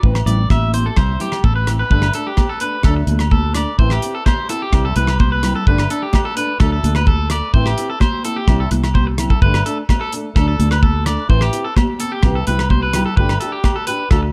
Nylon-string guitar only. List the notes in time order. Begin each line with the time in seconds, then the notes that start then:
0.03 E3 C4, muted nylon-string guitar stroke
0.27 C4 E4
0.73 C4 E4
0.96 G3 E4, muted nylon-string guitar stroke
1.20 C4 E4
1.67 C4 E4
1.90 G3 A3 D4
2.15 A3 D4
2.62 A3 D4
2.86 F#3 A3 D4
3.08 A3 D4
3.54 A3 D4
3.79 E3 C4 E4
4.03 C4, muted nylon-string guitar stroke
4.50 C4 E4
4.73 G3 C4 E4
4.97 C4 E4
5.44 C4 E4
5.67 G3 A3 D4
5.90 D4
6.37 A3 D4
6.60 F#3 A3 D4
6.84 A3 D4
7.31 A3, muted nylon-string guitar stroke
7.54 E3 C4 E4
7.78 C4 E4
8.25 C4 E4
8.48 G3 C4 E4
8.71 C4 E4
9.19 C4 E4
9.44 G3 A3 D4
9.66 A3 D4
10.14 A3 D4
10.37 F#3 D4, muted nylon-string guitar stroke
10.60 A3 D4
11.06 A3 D4
11.29 E3 C4 E4
11.53 C4 E4
12.03 C4
12.23 E3 C4 G4, muted nylon-string guitar stroke
12.48 C4 E4 G4
12.95 E4 G4, muted nylon-string guitar stroke
13.18 A3 D4 G4
13.42 D4 G4
13.88 D4 G4
14.11 A3 D4 F#4